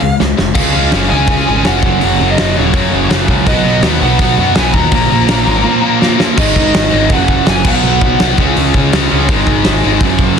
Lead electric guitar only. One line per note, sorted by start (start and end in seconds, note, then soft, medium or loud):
0.00 0.15 F5 medium
0.55 0.89 F5 loud
1.10 1.67 G#5 loud
1.67 2.02 F#5 loud
2.03 2.31 F#5 loud
2.30 2.58 D#5 medium
2.58 3.08 C#5 medium
3.47 3.81 D#5 medium
4.03 4.56 F#5 loud
4.56 4.75 G#5 loud
4.72 5.96 A#5 loud
6.38 7.13 D#5 medium
7.12 7.49 F#5 loud
7.50 7.67 G#5 loud
7.68 8.35 F#5 loud